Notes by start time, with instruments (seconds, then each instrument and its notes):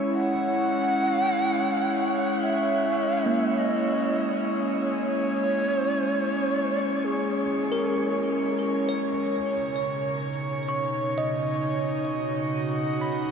Already playing: analog synth pad G#3 C#4 E4 C#5, tine electric piano D#5 G#5
0.14 shakuhachi F#5
2.43 shakuhachi E5
3.26 tine electric piano A#3
3.58 shakuhachi D#5
4.74 shakuhachi C#5 D#5
7.05 shakuhachi G#4
7.72 tine electric piano A#4
8.89 tine electric piano C#5
9.35 analog synth pad C#3
9.52 analog synth pad B2
9.92 analog synth pad D#4
10.69 tine electric piano C#6
10.88 analog synth pad D#5
11.18 tine electric piano D#5
12.02 analog synth pad F#4
12.96 analog synth pad F#5
13.01 tine electric piano B5